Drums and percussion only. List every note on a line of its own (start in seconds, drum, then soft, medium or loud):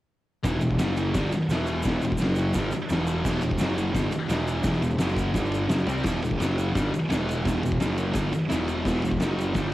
0.44 kick medium
0.44 snare loud
0.44 ride medium
0.44 shaker loud
0.61 ride medium
0.61 shaker medium
0.71 kick medium
0.79 snare loud
0.79 ride loud
0.79 shaker medium
0.97 ride medium
0.97 shaker medium
1.14 kick loud
1.14 snare loud
1.14 ride loud
1.14 shaker loud
1.32 ride medium
1.32 shaker medium
1.50 snare loud
1.50 ride loud
1.50 shaker loud
1.66 ride medium
1.66 shaker medium
1.83 kick loud
1.83 snare loud
1.83 ride loud
1.83 shaker medium
2.02 ride medium
2.02 shaker medium
2.12 kick medium
2.17 shaker loud
2.22 snare loud
2.22 ride loud
2.36 ride medium
2.36 shaker medium
2.53 kick medium
2.53 snare loud
2.53 ride medium
2.53 shaker loud
2.71 ride medium
2.71 shaker medium
2.89 snare loud
2.89 ride medium
2.89 shaker medium
3.07 ride medium
3.07 shaker medium
3.25 kick loud
3.25 snare loud
3.25 crash medium
3.25 shaker loud
3.41 ride medium
3.41 shaker medium
3.51 kick medium
3.58 snare loud
3.58 ride loud
3.58 shaker loud
3.78 ride medium
3.78 shaker medium
3.95 kick loud
3.95 snare loud
3.95 ride loud
3.95 shaker loud
4.12 ride medium
4.12 shaker medium
4.30 snare loud
4.30 ride loud
4.30 shaker medium
4.47 ride medium
4.47 shaker medium
4.63 kick loud
4.63 snare loud
4.63 ride medium
4.63 shaker loud
4.74 shaker soft
4.82 ride medium
4.82 shaker medium
4.98 snare loud
4.98 ride loud
4.98 shaker loud
5.09 shaker soft
5.16 kick medium
5.16 ride medium
5.16 shaker medium
5.34 kick loud
5.34 snare loud
5.34 ride medium
5.34 shaker loud
5.46 shaker soft
5.52 ride medium
5.52 shaker medium
5.69 snare loud
5.69 ride medium
5.69 shaker loud
5.87 ride medium
5.87 shaker medium
5.98 shaker soft
6.03 kick loud
6.03 snare loud
6.03 crash loud
6.03 shaker loud
6.22 ride medium
6.22 shaker medium
6.31 kick medium
6.40 snare loud
6.40 ride loud
6.40 shaker loud
6.58 ride medium
6.58 shaker medium
6.75 kick loud
6.75 snare loud
6.75 ride medium
6.75 shaker loud
6.94 ride medium
6.94 shaker medium
7.10 snare loud
7.10 ride loud
7.10 shaker loud
7.29 ride medium
7.29 shaker medium
7.45 kick loud
7.45 snare loud
7.45 ride loud
7.45 shaker loud
7.63 ride medium
7.63 shaker medium
7.72 kick medium
7.80 snare loud
7.80 ride loud
7.80 shaker medium
7.98 ride medium
7.98 shaker medium
8.13 kick loud
8.13 snare loud
8.13 ride loud
8.13 shaker loud
8.32 ride medium
8.32 shaker medium
8.50 snare loud
8.50 ride loud
8.50 shaker loud
8.68 ride medium
8.68 shaker medium
8.85 kick loud
8.85 snare loud
8.85 crash medium
8.85 shaker medium
9.02 ride medium
9.02 shaker medium
9.11 kick loud
9.20 snare loud
9.20 ride loud
9.20 shaker loud
9.39 ride medium
9.39 shaker medium
9.54 kick loud
9.54 snare loud
9.54 ride medium
9.54 shaker medium